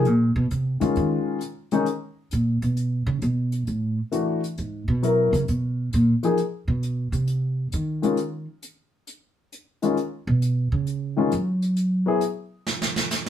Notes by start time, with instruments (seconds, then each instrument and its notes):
0.05 upright bass A#2, closed hi-hat
0.36 upright bass B2
0.51 upright bass C3, closed hi-hat
0.80 upright bass D3, grand piano D#3 G#3 C#4 F4, closed hi-hat
0.96 upright bass D#3, closed hi-hat
1.41 closed hi-hat
1.71 grand piano D#3 G#3 C#4 D#4, closed hi-hat
1.86 closed hi-hat
2.31 upright bass A#2, closed hi-hat
2.62 upright bass B2, closed hi-hat
2.77 closed hi-hat
3.07 upright bass C#3
3.22 upright bass B2, closed hi-hat
3.52 closed hi-hat
3.67 upright bass A2, closed hi-hat
4.12 grand piano E3 A3 D4 F#4, closed hi-hat
4.44 closed hi-hat
4.57 upright bass G#2, closed hi-hat
4.88 upright bass B2
5.03 grand piano F#3 B3 E4 A#4, closed hi-hat
5.33 upright bass C#3, closed hi-hat
5.48 upright bass B2, closed hi-hat
5.93 upright bass A#2, closed hi-hat
6.23 grand piano F3 A#3 D#4 G#4, closed hi-hat
6.37 closed hi-hat
6.68 upright bass B2
6.83 closed hi-hat
7.12 upright bass C3, closed hi-hat
7.27 closed hi-hat
7.72 upright bass D#3, closed hi-hat
8.02 grand piano D#3 G#3 C#4 F4, closed hi-hat
8.17 closed hi-hat
8.62 closed hi-hat
9.07 closed hi-hat
9.52 closed hi-hat
9.82 grand piano D#3 G#3 C#4 F4, closed hi-hat
9.97 closed hi-hat
10.27 upright bass B2
10.42 closed hi-hat
10.72 upright bass C#3
10.87 closed hi-hat
11.17 grand piano D#3 G#3 C#4 F4
11.31 upright bass F#3, closed hi-hat
11.62 closed hi-hat
11.76 closed hi-hat
12.06 grand piano F#3 B3 E4 G#4
12.21 closed hi-hat
12.67 snare
12.82 snare
12.96 snare
13.11 snare, hi-hat pedal